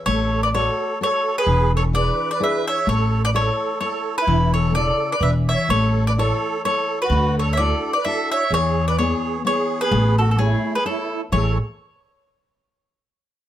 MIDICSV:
0, 0, Header, 1, 5, 480
1, 0, Start_track
1, 0, Key_signature, 3, "major"
1, 0, Tempo, 469116
1, 75, Time_signature, 3, 2, 24, 8
1, 13797, End_track
2, 0, Start_track
2, 0, Title_t, "Mandolin"
2, 0, Program_c, 0, 25
2, 60, Note_on_c, 0, 73, 92
2, 413, Note_off_c, 0, 73, 0
2, 442, Note_on_c, 0, 74, 77
2, 492, Note_off_c, 0, 74, 0
2, 558, Note_on_c, 0, 73, 81
2, 1003, Note_off_c, 0, 73, 0
2, 1058, Note_on_c, 0, 73, 85
2, 1410, Note_off_c, 0, 73, 0
2, 1414, Note_on_c, 0, 71, 96
2, 1754, Note_off_c, 0, 71, 0
2, 1809, Note_on_c, 0, 73, 79
2, 1863, Note_off_c, 0, 73, 0
2, 1992, Note_on_c, 0, 74, 90
2, 2336, Note_off_c, 0, 74, 0
2, 2363, Note_on_c, 0, 74, 81
2, 2463, Note_off_c, 0, 74, 0
2, 2492, Note_on_c, 0, 76, 74
2, 2725, Note_off_c, 0, 76, 0
2, 2737, Note_on_c, 0, 76, 93
2, 2937, Note_off_c, 0, 76, 0
2, 2956, Note_on_c, 0, 73, 73
2, 3296, Note_off_c, 0, 73, 0
2, 3323, Note_on_c, 0, 74, 101
2, 3371, Note_off_c, 0, 74, 0
2, 3435, Note_on_c, 0, 73, 83
2, 3882, Note_off_c, 0, 73, 0
2, 3894, Note_on_c, 0, 73, 70
2, 4271, Note_off_c, 0, 73, 0
2, 4275, Note_on_c, 0, 71, 86
2, 4638, Note_off_c, 0, 71, 0
2, 4642, Note_on_c, 0, 73, 77
2, 4848, Note_off_c, 0, 73, 0
2, 4859, Note_on_c, 0, 74, 91
2, 5230, Note_off_c, 0, 74, 0
2, 5242, Note_on_c, 0, 74, 79
2, 5343, Note_off_c, 0, 74, 0
2, 5348, Note_on_c, 0, 76, 73
2, 5419, Note_off_c, 0, 76, 0
2, 5616, Note_on_c, 0, 76, 85
2, 5819, Note_off_c, 0, 76, 0
2, 5834, Note_on_c, 0, 73, 99
2, 6180, Note_off_c, 0, 73, 0
2, 6213, Note_on_c, 0, 74, 89
2, 6261, Note_off_c, 0, 74, 0
2, 6338, Note_on_c, 0, 73, 73
2, 6794, Note_off_c, 0, 73, 0
2, 6806, Note_on_c, 0, 73, 78
2, 7148, Note_off_c, 0, 73, 0
2, 7181, Note_on_c, 0, 71, 77
2, 7520, Note_off_c, 0, 71, 0
2, 7566, Note_on_c, 0, 73, 73
2, 7704, Note_on_c, 0, 76, 68
2, 7711, Note_off_c, 0, 73, 0
2, 7750, Note_on_c, 0, 74, 83
2, 7764, Note_off_c, 0, 76, 0
2, 8105, Note_off_c, 0, 74, 0
2, 8118, Note_on_c, 0, 74, 77
2, 8223, Note_off_c, 0, 74, 0
2, 8232, Note_on_c, 0, 76, 83
2, 8496, Note_off_c, 0, 76, 0
2, 8508, Note_on_c, 0, 76, 91
2, 8705, Note_off_c, 0, 76, 0
2, 8736, Note_on_c, 0, 73, 96
2, 9071, Note_off_c, 0, 73, 0
2, 9084, Note_on_c, 0, 74, 78
2, 9187, Note_off_c, 0, 74, 0
2, 9194, Note_on_c, 0, 73, 72
2, 9640, Note_off_c, 0, 73, 0
2, 9688, Note_on_c, 0, 73, 81
2, 10025, Note_off_c, 0, 73, 0
2, 10037, Note_on_c, 0, 71, 85
2, 10385, Note_off_c, 0, 71, 0
2, 10421, Note_on_c, 0, 69, 63
2, 10539, Note_off_c, 0, 69, 0
2, 10552, Note_on_c, 0, 69, 52
2, 10625, Note_off_c, 0, 69, 0
2, 10627, Note_on_c, 0, 68, 68
2, 10977, Note_off_c, 0, 68, 0
2, 11003, Note_on_c, 0, 71, 71
2, 11107, Note_off_c, 0, 71, 0
2, 11112, Note_on_c, 0, 69, 60
2, 11462, Note_off_c, 0, 69, 0
2, 11588, Note_on_c, 0, 73, 82
2, 11838, Note_off_c, 0, 73, 0
2, 13797, End_track
3, 0, Start_track
3, 0, Title_t, "Accordion"
3, 0, Program_c, 1, 21
3, 89, Note_on_c, 1, 69, 62
3, 428, Note_off_c, 1, 69, 0
3, 455, Note_on_c, 1, 71, 75
3, 502, Note_off_c, 1, 71, 0
3, 565, Note_on_c, 1, 69, 65
3, 1007, Note_off_c, 1, 69, 0
3, 1055, Note_on_c, 1, 69, 66
3, 1390, Note_off_c, 1, 69, 0
3, 1413, Note_on_c, 1, 68, 85
3, 1753, Note_off_c, 1, 68, 0
3, 1795, Note_on_c, 1, 69, 73
3, 1888, Note_off_c, 1, 69, 0
3, 2023, Note_on_c, 1, 71, 64
3, 2352, Note_off_c, 1, 71, 0
3, 2387, Note_on_c, 1, 71, 81
3, 2459, Note_off_c, 1, 71, 0
3, 2474, Note_on_c, 1, 71, 86
3, 2714, Note_off_c, 1, 71, 0
3, 2745, Note_on_c, 1, 73, 72
3, 2941, Note_off_c, 1, 73, 0
3, 2956, Note_on_c, 1, 69, 72
3, 3296, Note_off_c, 1, 69, 0
3, 3331, Note_on_c, 1, 71, 79
3, 3377, Note_off_c, 1, 71, 0
3, 3434, Note_on_c, 1, 69, 70
3, 3877, Note_off_c, 1, 69, 0
3, 3912, Note_on_c, 1, 69, 70
3, 4255, Note_off_c, 1, 69, 0
3, 4306, Note_on_c, 1, 64, 84
3, 4638, Note_off_c, 1, 64, 0
3, 4656, Note_on_c, 1, 69, 78
3, 4856, Note_off_c, 1, 69, 0
3, 4876, Note_on_c, 1, 69, 69
3, 5218, Note_off_c, 1, 69, 0
3, 5235, Note_on_c, 1, 71, 82
3, 5325, Note_off_c, 1, 71, 0
3, 5341, Note_on_c, 1, 71, 74
3, 5461, Note_off_c, 1, 71, 0
3, 5608, Note_on_c, 1, 73, 62
3, 5815, Note_off_c, 1, 73, 0
3, 5841, Note_on_c, 1, 69, 65
3, 6184, Note_off_c, 1, 69, 0
3, 6220, Note_on_c, 1, 71, 71
3, 6266, Note_off_c, 1, 71, 0
3, 6326, Note_on_c, 1, 69, 78
3, 6770, Note_off_c, 1, 69, 0
3, 6813, Note_on_c, 1, 69, 71
3, 7151, Note_off_c, 1, 69, 0
3, 7190, Note_on_c, 1, 66, 83
3, 7525, Note_off_c, 1, 66, 0
3, 7556, Note_on_c, 1, 69, 72
3, 7691, Note_off_c, 1, 69, 0
3, 7705, Note_on_c, 1, 73, 59
3, 7760, Note_off_c, 1, 73, 0
3, 7761, Note_on_c, 1, 69, 72
3, 8103, Note_off_c, 1, 69, 0
3, 8146, Note_on_c, 1, 71, 68
3, 8238, Note_off_c, 1, 71, 0
3, 8247, Note_on_c, 1, 69, 82
3, 8484, Note_off_c, 1, 69, 0
3, 8519, Note_on_c, 1, 73, 76
3, 8709, Note_on_c, 1, 68, 75
3, 8711, Note_off_c, 1, 73, 0
3, 9056, Note_off_c, 1, 68, 0
3, 9078, Note_on_c, 1, 71, 76
3, 9183, Note_off_c, 1, 71, 0
3, 9199, Note_on_c, 1, 68, 64
3, 9643, Note_off_c, 1, 68, 0
3, 9695, Note_on_c, 1, 68, 77
3, 10029, Note_off_c, 1, 68, 0
3, 10052, Note_on_c, 1, 68, 86
3, 10393, Note_off_c, 1, 68, 0
3, 10426, Note_on_c, 1, 66, 66
3, 10554, Note_off_c, 1, 66, 0
3, 10569, Note_on_c, 1, 66, 57
3, 10629, Note_off_c, 1, 66, 0
3, 10641, Note_on_c, 1, 64, 55
3, 10984, Note_off_c, 1, 64, 0
3, 11016, Note_on_c, 1, 68, 75
3, 11114, Note_off_c, 1, 68, 0
3, 11131, Note_on_c, 1, 64, 54
3, 11473, Note_off_c, 1, 64, 0
3, 11610, Note_on_c, 1, 69, 60
3, 11850, Note_off_c, 1, 69, 0
3, 13797, End_track
4, 0, Start_track
4, 0, Title_t, "Nylon-string guitar"
4, 0, Program_c, 2, 24
4, 76, Note_on_c, 2, 57, 53
4, 542, Note_off_c, 2, 57, 0
4, 554, Note_on_c, 2, 66, 53
4, 561, Note_on_c, 2, 69, 41
4, 566, Note_on_c, 2, 73, 59
4, 938, Note_off_c, 2, 66, 0
4, 943, Note_off_c, 2, 69, 0
4, 945, Note_off_c, 2, 73, 0
4, 1032, Note_on_c, 2, 69, 39
4, 1037, Note_on_c, 2, 66, 34
4, 1044, Note_on_c, 2, 73, 40
4, 1416, Note_off_c, 2, 69, 0
4, 1420, Note_off_c, 2, 66, 0
4, 1422, Note_off_c, 2, 73, 0
4, 1504, Note_on_c, 2, 52, 57
4, 1973, Note_off_c, 2, 52, 0
4, 1978, Note_on_c, 2, 62, 51
4, 1984, Note_on_c, 2, 68, 52
4, 1987, Note_on_c, 2, 64, 36
4, 2366, Note_off_c, 2, 62, 0
4, 2370, Note_off_c, 2, 68, 0
4, 2371, Note_off_c, 2, 64, 0
4, 2456, Note_on_c, 2, 62, 44
4, 2462, Note_on_c, 2, 64, 44
4, 2463, Note_on_c, 2, 68, 47
4, 2845, Note_off_c, 2, 62, 0
4, 2847, Note_off_c, 2, 68, 0
4, 2848, Note_off_c, 2, 64, 0
4, 2935, Note_on_c, 2, 57, 53
4, 3406, Note_off_c, 2, 57, 0
4, 3419, Note_on_c, 2, 64, 55
4, 3425, Note_on_c, 2, 69, 50
4, 3430, Note_on_c, 2, 73, 45
4, 3806, Note_off_c, 2, 64, 0
4, 3811, Note_off_c, 2, 69, 0
4, 3811, Note_off_c, 2, 73, 0
4, 3893, Note_on_c, 2, 64, 45
4, 3897, Note_on_c, 2, 69, 35
4, 3898, Note_on_c, 2, 73, 43
4, 4283, Note_off_c, 2, 64, 0
4, 4284, Note_off_c, 2, 69, 0
4, 4286, Note_off_c, 2, 73, 0
4, 4375, Note_on_c, 2, 52, 65
4, 4846, Note_off_c, 2, 52, 0
4, 4863, Note_on_c, 2, 49, 43
4, 4874, Note_on_c, 2, 64, 42
4, 4879, Note_on_c, 2, 69, 58
4, 5250, Note_off_c, 2, 49, 0
4, 5257, Note_off_c, 2, 64, 0
4, 5258, Note_off_c, 2, 69, 0
4, 5344, Note_on_c, 2, 52, 56
4, 5815, Note_off_c, 2, 52, 0
4, 5836, Note_on_c, 2, 57, 52
4, 6303, Note_off_c, 2, 57, 0
4, 6325, Note_on_c, 2, 64, 50
4, 6332, Note_on_c, 2, 69, 46
4, 6332, Note_on_c, 2, 73, 52
4, 6708, Note_off_c, 2, 64, 0
4, 6710, Note_off_c, 2, 69, 0
4, 6711, Note_off_c, 2, 73, 0
4, 6804, Note_on_c, 2, 64, 42
4, 6809, Note_on_c, 2, 69, 37
4, 6813, Note_on_c, 2, 73, 37
4, 7186, Note_off_c, 2, 64, 0
4, 7189, Note_off_c, 2, 69, 0
4, 7192, Note_off_c, 2, 73, 0
4, 7287, Note_on_c, 2, 50, 68
4, 7748, Note_off_c, 2, 50, 0
4, 7760, Note_on_c, 2, 62, 55
4, 7763, Note_on_c, 2, 66, 52
4, 7769, Note_on_c, 2, 64, 44
4, 8142, Note_off_c, 2, 62, 0
4, 8144, Note_off_c, 2, 66, 0
4, 8146, Note_off_c, 2, 64, 0
4, 8242, Note_on_c, 2, 62, 44
4, 8243, Note_on_c, 2, 64, 38
4, 8247, Note_on_c, 2, 66, 46
4, 8622, Note_off_c, 2, 62, 0
4, 8622, Note_off_c, 2, 64, 0
4, 8625, Note_off_c, 2, 66, 0
4, 8719, Note_on_c, 2, 52, 64
4, 9182, Note_off_c, 2, 52, 0
4, 9198, Note_on_c, 2, 64, 39
4, 9202, Note_on_c, 2, 59, 44
4, 9206, Note_on_c, 2, 68, 46
4, 9580, Note_off_c, 2, 64, 0
4, 9583, Note_off_c, 2, 59, 0
4, 9585, Note_off_c, 2, 68, 0
4, 9666, Note_on_c, 2, 59, 46
4, 9676, Note_on_c, 2, 64, 32
4, 9682, Note_on_c, 2, 68, 49
4, 10053, Note_off_c, 2, 59, 0
4, 10059, Note_off_c, 2, 64, 0
4, 10062, Note_off_c, 2, 68, 0
4, 10154, Note_on_c, 2, 57, 69
4, 10615, Note_off_c, 2, 57, 0
4, 10625, Note_on_c, 2, 57, 52
4, 10630, Note_on_c, 2, 68, 43
4, 10633, Note_on_c, 2, 73, 57
4, 11016, Note_off_c, 2, 57, 0
4, 11016, Note_off_c, 2, 68, 0
4, 11020, Note_off_c, 2, 73, 0
4, 11105, Note_on_c, 2, 64, 41
4, 11112, Note_on_c, 2, 73, 43
4, 11116, Note_on_c, 2, 69, 35
4, 11498, Note_off_c, 2, 64, 0
4, 11500, Note_off_c, 2, 73, 0
4, 11504, Note_off_c, 2, 69, 0
4, 11582, Note_on_c, 2, 45, 48
4, 11589, Note_on_c, 2, 52, 47
4, 11593, Note_on_c, 2, 57, 45
4, 11598, Note_on_c, 2, 64, 47
4, 11606, Note_on_c, 2, 68, 48
4, 11834, Note_off_c, 2, 45, 0
4, 11838, Note_off_c, 2, 52, 0
4, 11841, Note_off_c, 2, 57, 0
4, 11842, Note_off_c, 2, 64, 0
4, 11847, Note_off_c, 2, 68, 0
4, 13797, End_track
5, 0, Start_track
5, 0, Title_t, "Upright bass"
5, 0, Program_c, 3, 32
5, 61, Note_on_c, 3, 33, 76
5, 690, Note_off_c, 3, 33, 0
5, 1500, Note_on_c, 3, 28, 94
5, 2126, Note_off_c, 3, 28, 0
5, 2937, Note_on_c, 3, 33, 88
5, 3564, Note_off_c, 3, 33, 0
5, 4371, Note_on_c, 3, 28, 93
5, 5002, Note_off_c, 3, 28, 0
5, 5327, Note_on_c, 3, 28, 94
5, 5648, Note_off_c, 3, 28, 0
5, 5820, Note_on_c, 3, 33, 89
5, 6452, Note_off_c, 3, 33, 0
5, 7261, Note_on_c, 3, 38, 108
5, 7889, Note_off_c, 3, 38, 0
5, 8702, Note_on_c, 3, 40, 94
5, 9330, Note_off_c, 3, 40, 0
5, 10145, Note_on_c, 3, 33, 114
5, 10774, Note_off_c, 3, 33, 0
5, 11586, Note_on_c, 3, 33, 94
5, 11837, Note_off_c, 3, 33, 0
5, 13797, End_track
0, 0, End_of_file